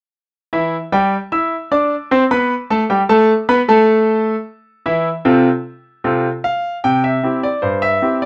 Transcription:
grand piano
0.53 E3 E4 E5
0.92 G3 G4 G5
1.32 E4 E5 E6
1.72 D4 D5 D6
2.11 C4 C5 C6
2.31 B3 B4 B5
2.70 A3 A4 A5
2.90 G3 G4 G5
3.09 A3 A4 A5
3.49 B3 B4 B5
3.68 A3 A4 A5
4.86 E3 E4 E5
5.25 C3 C4 F4 A4
6.04 C3 C4 F4 A4
6.44 F5
6.84 C3 G5
7.04 E5
7.23 C4 E4 G4
7.43 D5
7.62 G2 C5
7.82 E5
8.02 C4 E4 G4
8.22 D5

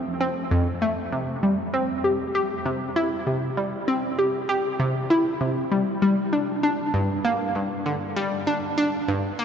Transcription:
synth arpeggio sound
Already playing: C4
0.21 C4
0.51 F2
0.82 A3
1.12 C3
1.43 G3
1.74 C4
2.04 G4
2.35 G4
2.66 C3
2.96 E4
3.27 C3
3.57 G3
3.88 C4
4.19 G4
4.49 G4
4.80 C3
5.10 E4
5.41 C3
5.71 G3
6.02 G3
6.33 D4
6.63 D4
6.94 G2
7.25 A#3
7.55 G2
7.86 D3
8.16 G3
8.47 D4
8.78 D4
9.08 G2
9.39 A#3

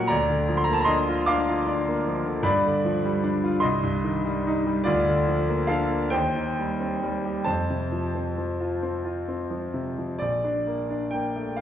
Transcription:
grand piano
Already playing: A#2 F#3 A#3 C#4 F4 F#4 G#4 A#4 C#5 D#5 F5 F#5
0.08 D2 D5 A#5
0.30 D3
0.48 F3
0.57 C6
0.64 A#5
0.68 A#3
0.73 A5
0.81 A#5
0.85 D4 D#5 C6
1.09 F4
1.26 D4 F5 D6
1.49 F4
1.67 D4
1.87 A#3
2.07 F3
2.26 D3
2.43 G2 D5 B5
2.65 D3
2.85 F3
3.05 G3
3.24 D4
3.44 F4
3.60 C2 D#5 C6
3.83 G2
4.04 D#3
4.25 G3
4.47 D#4
4.66 G3
4.84 D2 F4 D5
5.06 D3
5.28 F3
5.48 A#3
5.67 D4 A4 F5
5.91 A#3
6.10 D#2 C5 G5
6.36 D#3
6.59 G3
6.80 C4
7.03 G3
7.25 G4
7.44 F2 C5 A5
7.70 C3
7.92 F3
8.15 C4
8.38 F3
8.61 F4
8.83 C4
9.05 F4
9.28 C4
9.50 F3
9.74 C3
9.98 F3
10.19 A#1 D5
10.44 D4
10.67 A#3
10.90 D4
11.11 A#3 G5
11.36 A3
11.57 F5

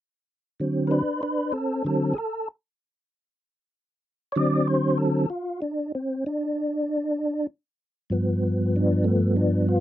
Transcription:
tonewheel organ
0.60 D3 F#3 C4
0.87 D4 A#4 B4
1.23 D4 B4
1.52 C4 A4
1.85 D3 F#3 C4 A4
2.14 G#4
2.18 A4
4.32 D3 F#3 C#5
4.36 C4 D5
4.67 C5
4.98 A4
5.30 F4
5.62 D4
5.95 C4
6.26 D4
8.10 G2 F3 B3
8.76 D4
9.04 A3
9.36 D4
9.69 F4

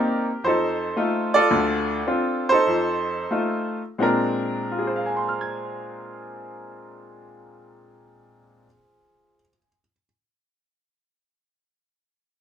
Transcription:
upright piano
Already playing: A#3 C4 D#4 G4 A#4 D5
0.44 F2 D#4 A4 C5
0.97 A3 D#4 F4
1.34 F4 A4 D5
1.51 D2 D3
2.07 C4 D4 F4
2.49 D#4 A4 C5
2.67 F2
3.31 A3 D#4 F4
3.98 A#2 G#3 C4 D4
4.03 A#4
4.72 F4
4.79 G#4
4.87 C5
4.96 F5
5.06 G#5
5.17 C6
5.29 F6
5.41 G#6

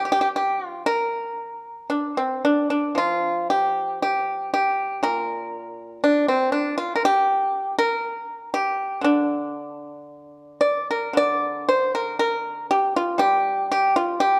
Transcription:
pipa
Already playing: F3
0.05 G4
0.12 G4
0.21 G4
0.36 G4
0.66 F4
0.86 A#4
1.90 D4
2.17 C4
2.45 D4
2.70 D4
2.95 F3 F4
3.50 G4
4.02 G4
4.54 G4
5.03 A#2 A#4
6.04 D4
6.28 C4
6.52 D4
6.78 F4
6.96 A#4
7.05 G4
7.79 A#4
8.54 G4
9.01 D3 D4
10.61 D5
10.91 A#4
11.13 D3 D5
11.69 C5
11.95 A#4
12.19 A#4
12.71 G4
12.96 F4
13.18 G3 G4
13.72 G4
13.96 F4
14.20 G4

